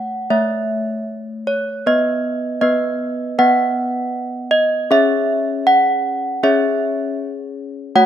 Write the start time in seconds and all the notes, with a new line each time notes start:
Already playing: A3 C#5 F#5
0.30 A3 C#5 E5
1.47 C#5
1.86 B3 B4 D#5
2.61 B3 B4 D#5
3.39 B3 B4 D#5 F#5
4.51 D#5
4.91 C#4 G#4 C#5 E5
5.67 F#5
6.43 C#4 G#4 C#5 E5
7.95 A3 F#4 C#5 F#5